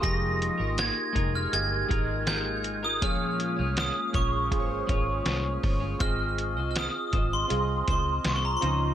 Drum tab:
HH |xxxxxxxx|xxxxxxxo|xxxxxxxx|
SD |--o---o-|--o---o-|--o---o-|
BD |o--o-o--|o--ooo-o|o--o-o--|